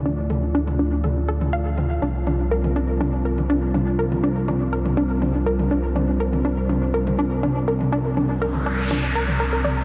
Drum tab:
T2 |--o--o--o--o--o-|--o--o--o--o--o-|-o--o--o--o--o--|o--o--o--o--o--o|

T2 |--o--o--o--o--o-|